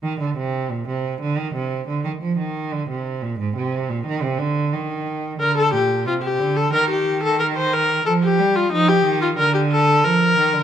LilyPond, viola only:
\new Staff \with { instrumentName = "Viola" } { \time 4/4 \key bes \mixolydian \tempo 4 = 90 r1 | r1 | bes'16 a'16 g'8 f'16 g'8 a'16 bes'16 g'8 a'16 bes'16 c''16 bes'8 | a'16 g'8 f'16 ees'16 g'8 f'16 bes'16 g'16 a'8 bes'4 | }